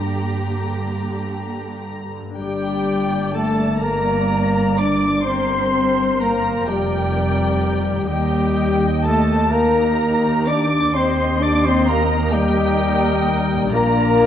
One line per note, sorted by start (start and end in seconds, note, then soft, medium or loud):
0.00 2.15 G2 soft
0.00 2.19 G2 soft
0.00 2.15 D3 soft
0.00 1.61 A#3 soft
0.00 2.24 A#3 soft
0.00 2.28 D4 soft
0.00 1.86 G4 medium
0.00 2.15 G4 soft
0.00 2.33 G4 soft
0.00 2.15 A#5 soft
2.20 6.10 G2 soft
2.25 6.15 A#3 soft
2.30 6.20 D4 soft
2.34 3.30 G3 medium
2.34 6.24 G4 soft
2.34 3.31 G5 medium
2.38 6.64 G1 soft
2.38 6.64 G2 medium
2.38 5.22 A#3 soft
2.38 3.36 G4 medium
2.38 3.79 D5 soft
2.38 3.31 G5 medium
3.34 3.82 A3 medium
3.34 3.84 A4 medium
3.34 3.82 A5 medium
3.34 3.83 A5 soft
3.34 3.83 A5 medium
3.80 4.75 A#3 medium
3.80 4.80 A#4 medium
3.80 5.23 D5 soft
3.80 4.75 A#5 medium
3.80 4.78 A#5 medium
4.77 5.26 D4 medium
4.77 5.24 D5 medium
4.77 5.26 D6 medium
5.25 6.19 C4 medium
5.25 8.06 A#4 soft
5.25 6.22 C5 medium
5.25 6.65 C5 soft
5.25 6.19 C6 medium
5.25 6.21 C6 medium
5.25 6.19 C6 medium
6.20 6.69 A#3 medium
6.20 6.66 A#4 medium
6.20 6.68 A#5 soft
6.20 6.69 A#5 medium
6.67 8.10 F1 medium
6.67 8.10 F2 medium
6.67 8.09 G3 medium
6.67 8.06 G4 medium
6.67 8.10 D5 medium
6.67 8.09 G5 medium
6.67 7.81 G5 medium
6.67 8.07 G5 medium
7.92 11.82 D#3 soft
7.97 11.87 A#3 soft
8.01 11.91 D#4 soft
8.05 11.95 G4 soft
8.05 8.88 G4 medium
8.05 9.02 G5 medium
8.10 10.91 D#2 medium
8.10 8.89 G3 medium
8.10 10.91 G4 soft
8.10 9.49 D#5 soft
8.10 9.03 G5 medium
9.03 9.52 A3 medium
9.03 9.52 A4 medium
9.03 9.51 A5 medium
9.03 9.52 A5 medium
9.51 10.48 A#3 medium
9.51 10.92 D#4 medium
9.51 10.49 A#4 medium
9.51 10.47 A#5 medium
9.51 10.48 A#5 medium
10.47 10.95 D4 medium
10.47 10.95 D5 medium
10.47 10.95 D6 medium
10.47 10.94 D6 medium
10.47 10.95 D6 medium
10.94 13.69 D#2 medium
10.94 11.41 C4 medium
10.94 12.30 G4 soft
10.94 11.44 C5 medium
10.94 12.30 D#5 medium
10.94 11.42 C6 medium
10.94 11.41 C6 medium
11.40 11.64 D4 medium
11.40 11.67 D5 medium
11.40 11.64 D6 medium
11.40 11.65 D6 medium
11.65 11.88 C4 medium
11.65 11.90 C5 medium
11.65 11.87 C6 medium
11.65 11.88 C6 medium
11.87 12.33 A#3 medium
11.87 12.32 A#4 medium
11.87 12.33 A#5 medium
12.32 13.73 G3 medium
12.32 13.43 G4 medium
12.32 13.73 A#4 medium
12.32 13.70 D#5 medium
12.32 13.48 G5 medium
12.32 13.73 G5 medium
13.55 14.26 A#2 medium
13.59 14.26 A#3 soft
13.64 14.26 D4 soft
13.69 14.26 A#1 medium
13.69 14.26 F4 soft
13.73 14.26 A#2 medium
13.73 14.26 A#3 medium
13.73 14.26 F4 medium
13.73 14.26 A#4 medium
13.73 14.26 D5 medium
13.73 14.26 A#5 medium